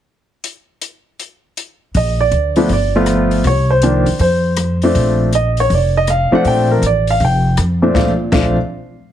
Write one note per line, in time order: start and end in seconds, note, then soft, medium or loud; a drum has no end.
0.44 closed hi-hat soft
0.82 closed hi-hat soft
1.20 closed hi-hat soft
1.57 closed hi-hat medium
1.94 2.30 A#1 medium
1.94 2.20 D#5 medium
1.94 kick soft
1.94 open hi-hat soft
2.21 2.67 D5 medium
2.31 2.67 D2 medium
2.31 closed hi-hat soft
2.56 2.68 F3 medium
2.56 2.69 A3 medium
2.56 2.69 B3 medium
2.56 2.69 D4 medium
2.56 open hi-hat soft
2.69 3.41 G1 medium
2.69 3.29 D5 medium
2.69 kick soft
2.69 open hi-hat soft
2.96 3.43 F3 medium
2.96 3.43 A3 medium
2.96 3.43 B3 medium
2.96 3.43 F4 medium
3.06 cross-stick medium
3.06 closed hi-hat soft
3.31 open hi-hat soft
3.44 4.03 C2 medium
3.44 3.70 C#5 medium
3.44 kick soft
3.44 open hi-hat soft
3.70 4.17 C5 medium
3.82 4.05 D#3 medium
3.82 4.05 F3 medium
3.82 4.05 A#3 medium
3.82 4.05 D4 medium
3.82 closed hi-hat soft
4.06 4.18 D#2 medium
4.06 open hi-hat soft
4.19 4.91 F2 medium
4.19 4.78 C5 medium
4.19 kick soft
4.19 open hi-hat soft
4.57 cross-stick medium
4.57 closed hi-hat medium
4.82 5.30 F3 medium
4.82 5.31 A3 medium
4.82 5.31 C4 medium
4.82 5.31 D4 medium
4.82 open hi-hat soft
4.95 5.66 A#1 medium
4.95 kick soft
4.95 open hi-hat soft
5.33 5.58 D#5 medium
5.33 closed hi-hat soft
5.57 5.71 C#5 medium
5.57 open hi-hat soft
5.70 6.28 F1 medium
5.70 kick soft
5.70 open hi-hat soft
5.74 5.96 D5 medium
5.97 6.09 D#5 medium
6.07 6.33 F5 medium
6.07 cross-stick medium
6.07 closed hi-hat medium
6.31 6.80 F3 medium
6.31 6.80 A3 medium
6.31 6.80 C4 medium
6.31 6.80 D4 medium
6.31 6.46 F#5 medium
6.31 muted upright bass stroke soft
6.45 6.80 A#1 medium
6.45 6.70 G5 medium
6.45 kick soft
6.45 open hi-hat soft
6.71 6.83 A#4 medium
6.82 7.17 A1 medium
6.82 closed hi-hat soft
6.86 7.08 D5 medium
7.07 7.21 F5 medium
7.07 open hi-hat soft
7.20 7.55 F1 medium
7.20 kick soft
7.20 open hi-hat soft
7.25 7.57 G5 medium
7.57 7.93 F2 medium
7.57 cross-stick medium
7.57 closed hi-hat medium
7.82 8.30 A#2 medium
7.82 7.93 F3 soft
7.82 7.93 A3 soft
7.82 7.94 C4 medium
7.82 7.95 D4 medium
7.95 8.09 A#1 medium
7.95 8.10 F3 medium
7.95 8.10 A3 medium
7.95 8.10 C4 medium
7.95 8.10 D4 medium
7.95 8.10 F5 medium
7.95 kick medium
7.95 snare medium
8.32 8.55 A#1 loud
8.32 8.55 F3 medium
8.32 8.55 A3 medium
8.32 8.55 C4 medium
8.32 8.56 D4 medium
8.32 8.56 F5 medium
8.32 kick medium
8.32 snare medium
8.32 crash medium